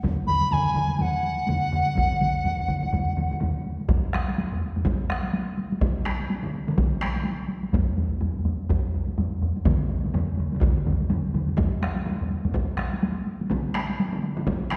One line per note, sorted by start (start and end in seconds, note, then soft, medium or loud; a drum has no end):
0.04 taiko medium
0.04 taiko low-mid loud
0.04 taiko mid medium
0.04 taiko high medium
0.27 0.54 B5 medium
0.27 taiko low-mid medium
0.27 taiko mid medium
0.27 taiko high soft
0.41 taiko high soft
0.51 0.96 G#5 medium
0.51 taiko low-mid loud
0.51 taiko mid medium
0.51 taiko high medium
0.74 taiko low-mid medium
0.74 taiko mid medium
0.74 taiko high soft
0.88 taiko high soft
0.96 1.03 G#5 soft
0.96 taiko high medium
1.01 3.42 F#5 medium
1.01 taiko low-mid medium
1.01 taiko mid medium
1.23 taiko high soft
1.37 taiko high soft
1.47 taiko low-mid medium
1.47 taiko mid medium
1.47 taiko high medium
1.72 taiko low-mid medium
1.72 taiko mid medium
1.86 taiko high soft
1.96 taiko medium
1.96 taiko low-mid medium
1.96 taiko mid medium
1.96 taiko high medium
2.11 taiko low-mid medium
2.11 taiko mid medium
2.20 taiko low-mid medium
2.20 taiko mid medium
2.20 taiko high soft
2.36 taiko high soft
2.45 taiko low-mid medium
2.45 taiko mid medium
2.45 taiko high medium
2.59 taiko low-mid medium
2.59 taiko mid medium
2.68 taiko medium
2.68 taiko low-mid medium
2.68 taiko mid medium
2.68 taiko high soft
2.82 taiko low-mid medium
2.82 taiko mid medium
2.82 taiko high soft
2.93 taiko medium
2.93 taiko low-mid medium
2.93 taiko mid medium
2.93 taiko high medium
3.17 taiko low-mid medium
3.17 taiko mid medium
3.17 taiko high soft
3.31 taiko low-mid medium
3.31 taiko mid medium
3.31 taiko high soft
3.40 taiko low-mid medium
3.40 taiko mid medium
3.40 taiko high medium
3.66 taiko high soft
3.80 taiko high soft
3.89 taiko medium
3.89 taiko low-mid loud
3.89 taiko high medium
4.14 taiko rim medium
4.14 taiko high medium
4.28 taiko high medium
4.38 taiko high medium
4.53 taiko low-mid loud
4.62 taiko high medium
4.76 taiko low-mid medium
4.76 taiko high medium
4.85 taiko loud
4.85 taiko low-mid medium
4.85 taiko high medium
5.10 taiko rim medium
5.10 taiko high medium
5.24 taiko high medium
5.33 taiko high medium
5.57 taiko high medium
5.72 taiko high medium
5.81 taiko loud
5.81 taiko mid loud
5.81 taiko high medium
6.05 taiko rim medium
6.05 taiko high medium
6.20 taiko high medium
6.30 taiko high medium
6.44 taiko mid loud
6.54 taiko high medium
6.68 taiko mid loud
6.68 taiko high medium
6.78 taiko loud
6.78 taiko mid medium
6.78 taiko high medium
7.01 taiko rim medium
7.01 taiko high medium
7.16 taiko high medium
7.25 taiko high medium
7.49 taiko high medium
7.63 taiko high medium
7.73 taiko medium
7.73 taiko low-mid loud
7.73 taiko high medium
7.97 taiko low-mid medium
7.97 taiko high medium
8.12 taiko high medium
8.21 taiko low-mid medium
8.21 taiko high medium
8.36 taiko low-mid medium
8.45 taiko low-mid medium
8.45 taiko high medium
8.69 taiko medium
8.69 taiko low-mid medium
8.69 taiko high medium
8.94 taiko low-mid medium
8.94 taiko high medium
9.08 taiko low-mid medium
9.08 taiko high soft
9.18 taiko low-mid medium
9.18 taiko high medium
9.41 taiko low-mid medium
9.41 taiko high soft
9.56 taiko high medium
9.65 taiko loud
9.65 taiko low-mid loud
9.65 taiko mid loud
9.65 taiko high medium
9.90 taiko high medium
10.04 taiko low-mid medium
10.04 taiko mid medium
10.04 taiko high medium
10.14 taiko low-mid loud
10.14 taiko mid medium
10.14 taiko high medium
10.37 taiko low-mid medium
10.37 taiko mid medium
10.37 taiko high medium
10.52 taiko low-mid medium
10.52 taiko mid medium
10.52 taiko high medium
10.61 taiko loud
10.61 taiko low-mid medium
10.61 taiko mid medium
10.61 taiko high medium
10.77 taiko low-mid medium
10.77 taiko mid medium
10.86 taiko low-mid medium
10.86 taiko mid medium
10.86 taiko high medium
11.01 taiko high medium
11.10 taiko low-mid medium
11.10 taiko mid medium
11.10 taiko high medium
11.34 taiko low-mid medium
11.34 taiko mid medium
11.34 taiko high medium
11.49 taiko high medium
11.58 taiko loud
11.58 taiko low-mid loud
11.58 taiko high medium
11.82 taiko rim medium
11.82 taiko high medium
11.96 taiko high medium
12.06 taiko high medium
12.21 taiko low-mid medium
12.30 taiko high medium
12.45 taiko low-mid loud
12.45 taiko high medium
12.54 taiko loud
12.54 taiko low-mid medium
12.54 taiko high medium
12.78 taiko rim medium
12.78 taiko high medium
12.93 taiko high medium
13.03 taiko high medium
13.26 taiko high medium
13.41 taiko high medium
13.50 taiko medium
13.50 taiko mid loud
13.50 taiko high medium
13.74 taiko rim medium
13.74 taiko high medium
13.90 taiko high medium
14.00 taiko high medium
14.13 taiko mid medium
14.23 taiko high medium
14.37 taiko mid loud
14.37 taiko high medium
14.47 taiko loud
14.47 taiko mid medium
14.47 taiko high medium
14.70 taiko rim medium
14.70 taiko high medium